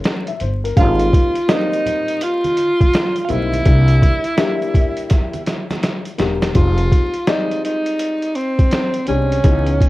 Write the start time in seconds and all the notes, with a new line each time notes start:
Already playing: G#3 A#3 C#4 E4
0.04 snare, closed hi-hat
0.27 E5, closed hi-hat
0.40 G1 C5, closed hi-hat
0.64 A#4, closed hi-hat
0.76 G#1 G3 A#3 C4 D4 F4 F5, kick, closed hi-hat, shaker
0.84 D#4
1.00 closed hi-hat, shaker
1.13 kick, closed hi-hat, high conga, shaker
1.36 closed hi-hat, shaker
1.48 G3 A#3 C4 D4 D#5, snare, closed hi-hat, shaker
1.53 D#4
1.72 closed hi-hat, shaker
1.86 closed hi-hat, low conga, shaker
2.08 closed hi-hat, shaker
2.21 F4 F5, closed hi-hat, shaker
2.44 closed hi-hat, high conga, shaker
2.57 closed hi-hat, shaker
2.81 kick, closed hi-hat, high conga, shaker
2.94 snare, closed hi-hat, shaker
3.16 closed hi-hat, shaker
3.25 G3 F4 F5, closed hi-hat
3.29 B1 A#3 C4 D#4 E4 E5, low conga, shaker
3.53 closed hi-hat, high conga, shaker
3.65 C2 G3 A#3 D4 E4, kick, closed hi-hat, shaker
3.88 closed hi-hat, shaker
4.02 kick, closed hi-hat, high conga, shaker
4.24 closed hi-hat, shaker
4.37 G3 A#3 D4 G4, snare, closed hi-hat, shaker
4.62 closed hi-hat, shaker
4.74 kick, closed hi-hat, low conga, shaker
4.97 closed hi-hat, shaker
5.10 kick, snare, closed hi-hat, shaker
5.33 closed hi-hat, high conga, shaker
5.46 snare, closed hi-hat, shaker
5.70 snare, closed hi-hat, high conga, shaker
5.83 snare, closed hi-hat, shaker
6.05 closed hi-hat, shaker
6.18 E1 G3 A#3 D4 G4, snare, closed hi-hat, low conga, shaker
6.41 snare, closed hi-hat, high conga, shaker
6.54 F1 G3 G#3 C4 D#4 F4, kick, closed hi-hat
6.78 closed hi-hat
6.92 kick, closed hi-hat
7.13 closed hi-hat
7.27 G3 G#3 C4 D#4 D5, snare, closed hi-hat
7.51 closed hi-hat
7.64 D#4, closed hi-hat
7.86 closed hi-hat
7.99 closed hi-hat
8.22 closed hi-hat
8.35 C4, closed hi-hat
8.59 kick, closed hi-hat
8.71 snare, closed hi-hat
8.94 closed hi-hat
9.07 C2 G3 G#3 C4 C#4 D4, closed hi-hat
9.32 closed hi-hat
9.44 C#2 E3 G#3 B3 D#4, kick, closed hi-hat
9.67 closed hi-hat
9.81 kick, closed hi-hat